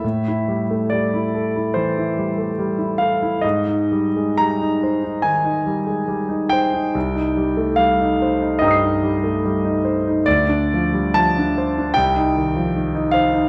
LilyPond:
<<
  \new Staff \with { instrumentName = "Grand piano" } { \time 4/4 \key c \mixolydian \tempo 4 = 72 << { r1 | r1 | r2 <g'' bes'' ees''' c''''>2 | r1 | } \\ { e''4 d''4 c''4 r8 f''8 | ees''4 bes''4 aes''4. g''8~ | g''4 f''4 ees''4 r4 | d''4 a''4 g''4. f''8 | } >> }
  \new Staff \with { instrumentName = "Grand piano" } { \time 4/4 \key c \mixolydian a,16 e'16 g16 a16 g16 e'16 a'16 e'16 e16 e'16 g16 a16 g16 e'16 a'16 e'16 | aes,16 ees'16 g16 aes16 g16 ees'16 c''16 ees'16 ees16 ees'16 g16 aes16 g16 ees'16 c''16 ees'16 | c,16 ees'16 g16 a16 g16 ees'16 c''16 ees'16 g,16 ees'16 g16 a16 g16 ees'16 c''16 ees'16 | d,16 d'16 f16 g16 f16 d'16 c''16 d'16 c,16 ees'16 ees16 f16 ees16 ees'16 c''16 ees'16 | }
>>